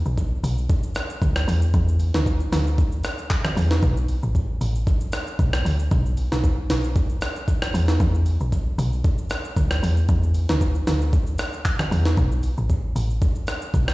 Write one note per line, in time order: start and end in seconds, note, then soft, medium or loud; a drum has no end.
0.06 0.41 B1 medium
0.06 shaker medium
0.18 kick medium
0.18 shaker medium
0.44 0.68 B1 loud
0.44 open hi-hat medium
0.44 shaker loud
0.58 shaker medium
0.70 kick loud
0.70 shaker medium
0.84 shaker medium
0.95 cross-stick medium
0.95 open hi-hat soft
0.95 shaker medium
1.10 shaker medium
1.22 1.46 D2 loud
1.22 kick loud
1.22 shaker medium
1.36 cross-stick loud
1.36 shaker medium
1.48 1.72 E2 loud
1.48 open hi-hat medium
1.48 shaker medium
1.62 shaker medium
1.74 2.12 E2 loud
1.74 kick loud
1.74 shaker medium
1.89 shaker medium
2.00 open hi-hat soft
2.00 shaker medium
2.14 2.50 D2 medium
2.14 snare medium
2.14 shaker medium
2.26 kick medium
2.26 shaker medium
2.40 shaker medium
2.52 3.01 D2 loud
2.52 snare medium
2.52 open hi-hat medium
2.52 shaker loud
2.67 shaker medium
2.78 kick loud
2.78 shaker medium
2.92 shaker medium
3.04 cross-stick medium
3.04 open hi-hat soft
3.04 shaker medium
3.19 shaker medium
3.30 kick loud
3.30 clap medium
3.30 shaker medium
3.45 cross-stick loud
3.45 mid tom loud
3.45 shaker medium
3.57 3.81 E2 loud
3.57 open hi-hat medium
3.57 shaker loud
3.71 snare medium
3.71 shaker medium
3.83 4.20 B1 loud
3.83 kick loud
3.83 shaker medium
3.97 shaker medium
4.08 open hi-hat soft
4.08 shaker medium
4.23 4.58 A1 medium
4.23 shaker medium
4.35 kick medium
4.35 shaker medium
4.61 4.85 A1 medium
4.61 open hi-hat medium
4.61 shaker medium
4.76 shaker medium
4.87 kick loud
4.87 shaker medium
5.01 shaker medium
5.12 cross-stick loud
5.12 open hi-hat soft
5.12 shaker medium
5.27 shaker medium
5.39 5.63 B1 loud
5.39 kick loud
5.39 shaker medium
5.53 cross-stick loud
5.53 shaker medium
5.65 5.90 D2 loud
5.65 open hi-hat medium
5.65 shaker loud
5.80 shaker medium
5.91 6.29 B1 loud
5.91 kick loud
5.91 shaker medium
6.06 shaker medium
6.17 open hi-hat soft
6.17 shaker medium
6.32 6.67 B1 medium
6.32 snare medium
6.32 shaker medium
6.44 kick medium
6.44 shaker medium
6.70 7.18 B1 medium
6.70 snare medium
6.70 open hi-hat medium
6.70 shaker loud
6.85 shaker medium
6.96 kick loud
6.96 shaker medium
7.10 shaker medium
7.21 cross-stick loud
7.21 open hi-hat soft
7.21 shaker medium
7.36 shaker medium
7.48 kick loud
7.48 shaker medium
7.62 cross-stick loud
7.62 shaker medium
7.74 7.98 E2 loud
7.74 open hi-hat medium
7.74 shaker medium
7.88 snare medium
7.88 shaker medium
8.00 8.38 E2 loud
8.00 kick loud
8.00 shaker medium
8.15 shaker medium
8.26 open hi-hat soft
8.26 shaker medium
8.40 8.76 B1 medium
8.40 shaker medium
8.52 kick medium
8.52 shaker medium
8.78 9.03 B1 loud
8.78 open hi-hat medium
8.78 shaker loud
8.93 shaker medium
9.04 kick loud
9.04 shaker medium
9.18 shaker medium
9.30 cross-stick loud
9.30 open hi-hat medium
9.30 shaker medium
9.45 shaker medium
9.56 9.81 D2 loud
9.56 kick loud
9.56 shaker medium
9.71 cross-stick medium
9.71 shaker medium
9.83 10.07 E2 medium
9.83 open hi-hat medium
9.83 shaker loud
9.97 shaker medium
10.09 10.47 E2 loud
10.09 kick loud
10.09 shaker medium
10.24 shaker medium
10.34 open hi-hat soft
10.34 shaker medium
10.49 10.85 D2 medium
10.49 snare medium
10.49 shaker medium
10.61 kick medium
10.61 shaker medium
10.75 shaker medium
10.87 11.36 D2 loud
10.87 snare medium
10.87 open hi-hat medium
10.87 shaker loud
11.02 shaker medium
11.13 kick loud
11.13 shaker medium
11.27 shaker medium
11.38 cross-stick loud
11.38 open hi-hat medium
11.38 shaker medium
11.54 shaker medium
11.65 kick loud
11.65 clap medium
11.65 shaker medium
11.79 cross-stick medium
11.79 mid tom medium
11.79 shaker medium
11.91 12.16 E2 loud
11.91 open hi-hat medium
11.91 shaker medium
12.05 snare medium
12.05 shaker medium
12.17 12.55 B1 loud
12.17 kick loud
12.17 shaker medium
12.32 shaker medium
12.43 open hi-hat soft
12.43 shaker medium
12.58 12.93 A1 medium
12.58 shaker medium
12.70 kick medium
12.70 shaker medium
12.96 13.20 A1 loud
12.96 open hi-hat medium
12.96 shaker loud
13.11 shaker medium
13.22 kick loud
13.22 shaker medium
13.36 shaker medium
13.47 cross-stick medium
13.47 open hi-hat medium
13.47 shaker medium
13.62 shaker medium
13.74 13.94 B1 loud
13.74 kick loud
13.74 shaker medium
13.88 cross-stick loud
13.88 shaker medium